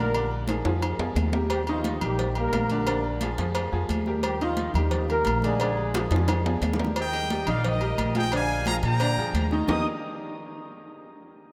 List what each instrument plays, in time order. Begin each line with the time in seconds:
Already playing: upright bass A#1, upright piano D3 D4 D5
0.00 trombone section A#3 A#4
0.14 upright piano D3 D4 D5, high conga, low agogo
0.31 high conga
0.48 upright piano F3 F4 G#4, high conga, high timbale, low agogo
0.65 upright bass F2, upright piano F3 F4 G#4, high conga, high timbale
0.82 high conga, high timbale, low agogo
0.99 upright bass F2, upright piano F3 F4 G#4, high conga, low timbale
1.15 upright bass D#2, high conga, low timbale, low agogo
1.33 upright piano G3 G4 A#4, high conga, low timbale
1.50 trombone section G3 G4, cowbell, high conga, low agogo
1.67 upright piano D#3 D#4 D#5, trombone section F3 F4, high conga, low agogo
1.84 cowbell, high conga
2.01 upright bass A#1, upright piano G3 G4 A#4, trombone section G3, high conga, low conga, low agogo
2.06 trombone section G4
2.19 cowbell, high conga, low conga
2.35 upright piano G3 G4 A#4, trombone section A#3, high conga, low agogo
2.41 trombone section A#4
2.53 upright bass A#1, cowbell, high conga, low timbale, low agogo
2.70 upright piano D3 D4 D5, high conga, low agogo
2.74 trombone section A#3 A#4
2.87 upright piano D3 D4 D5, cowbell, low agogo
3.04 high conga
3.21 upright piano F3 F4 G#4, cowbell, high conga, low agogo
3.38 upright bass F2, upright piano F3 F4 G#4, cowbell, high conga
3.55 cowbell, high conga, low agogo
3.72 upright bass F2, upright piano F3 F4 G#4, high conga
3.89 upright bass D#2, cowbell, high conga, low agogo
4.06 upright piano G3 G4 A#4, high conga
4.23 trombone section G3 G4, cowbell, high conga, low agogo
4.40 upright piano D#3 D#4 D#5, trombone section F3 F4, high conga, low agogo
4.57 cowbell, high conga
4.74 upright bass D#2, trombone section D#3 D#4, upright piano G3 G4 A#4, high conga, low conga, low agogo
4.91 cowbell, high conga, low conga
5.08 upright piano G3 G4 A#4, trombone section A#3 A#4, high conga, low agogo
5.25 upright bass A#1, cowbell, high conga, low agogo
5.42 upright piano D3 D4 D5, trombone section G#3 G#4, high conga, low agogo
5.60 upright piano D3 D4 D5, cowbell, low agogo
5.77 high conga
5.94 upright piano F3 F4 G#4, cowbell, high bongo, high conga, low agogo
6.10 upright bass F2, upright piano F3 F4 G#4, cowbell, high conga, high timbale
6.16 high bongo
6.28 cowbell, low bongo, high conga, high timbale, low agogo
6.45 upright piano F3 F4 G#4, high conga, low timbale
6.61 upright bass D#2, cowbell, high conga, low timbale, low agogo
6.73 low bongo
6.79 upright piano G3 G4 A#4, high conga, low timbale
6.84 low bongo
6.96 trumpet section D#5, cowbell, high conga, low agogo
7.00 trumpet section G5
7.13 upright piano G3 G4 A#4, high conga, low agogo
7.30 upright piano G3 G4 A#4, cowbell, high conga
7.47 upright bass A#1, upright piano D#3 D#4 D#5, trumpet section D5 F5, high conga, low conga, low agogo
7.64 trumpet section A#4 D#5, cowbell, high conga, low conga
7.81 upright piano G3 G4 A#4, high conga, low agogo
7.98 upright bass A#1, cowbell, high conga, low agogo
8.15 upright piano F3 F4 G#4, trumpet section D#5 G5, high conga, low agogo
8.32 upright piano D3 D4 D5, trumpet section F5 G#5, cowbell, low agogo
8.49 high conga
8.66 upright piano F3 F4 G#4, trumpet section F5 A#5, cowbell, high conga, low agogo
8.83 upright bass A#2, trumpet section G5 A#5, cowbell, high conga
9.00 upright piano D3 D4 D5, cowbell, high conga, low agogo
9.17 upright bass F2, upright piano F3 F4 G#4, high conga
9.34 upright bass D#2, cowbell, high conga, low agogo
9.51 upright piano D#3 D#4 D#5, high conga
9.68 upright bass D#2, upright piano D#3 A#3 D#4 G4 A#4 D#5, trumpet section D#6, low bongo, low conga, low timbale